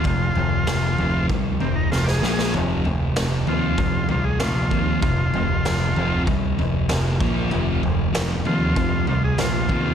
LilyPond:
<<
  \new Staff \with { instrumentName = "Transistor combo organ" } { \time 4/4 \key bes \major \tempo 4 = 96 f'2 r8 c'16 ees'16 f'16 <g' aes'>8. | r4. f'4 f'16 aes'16 f'4 | f'2 r2 | r4. f'4 f'16 aes'16 f'4 | }
  \new Staff \with { instrumentName = "Distorted electric guitar" } { \clef bass \time 4/4 \key bes \major <f, c>8 <f, c>8 <f, c>8 <f, c f>8 <f, c>8 <f, c>8 <f, c>8 <bes, f bes>8 | <f, c f>8 <f, c>8 <f, c>8 <f, c f>8 <f, c>8 <f, c>8 <f, c>8 <f, c f>8 | <f, c>8 <f, c>8 <f, c>8 <f, c f>8 <f, c>8 <f, c>8 <f, c>8 <bes, f bes>8 | <f, c f>8 <f, c>8 <f, c>8 <f, c f>8 <f, c>8 <f, c>8 <f, c>8 <f, c f>8 | }
  \new Staff \with { instrumentName = "Fingered electric bass" } { \clef bass \time 4/4 \key bes \major f,,8 f,,8 f,,8 f,,8 c,8 f,,8 f,,8 bes,,8 | f,,8 f,,8 f,,8 ees,8 f,8 c,8 bes,,8 ees,8 | f,,8 f,,8 f,,8 f,,8 c,8 f,,8 f,,8 bes,,8 | f,,8 f,,8 f,,8 ees,8 f,8 c,8 bes,,8 ees,8 | }
  \new DrumStaff \with { instrumentName = "Drums" } \drummode { \time 4/4 <bd tomfh>8 tomfh8 <sn tomfh>8 tomfh8 <bd tomfh>8 tomfh8 sn16 sn16 sn16 sn16 | tomfh8 tomfh8 <sn tomfh>8 tomfh8 <bd tomfh>8 tomfh8 <sn tomfh>8 <bd tomfh>8 | <bd tomfh>8 tomfh8 <sn tomfh>8 tomfh8 <bd tomfh>8 tomfh8 <sn tomfh>8 <bd tomfh>8 | tomfh8 tomfh8 <sn tomfh>8 tomfh8 <bd tomfh>8 tomfh8 <sn tomfh>8 <bd tomfh>8 | }
>>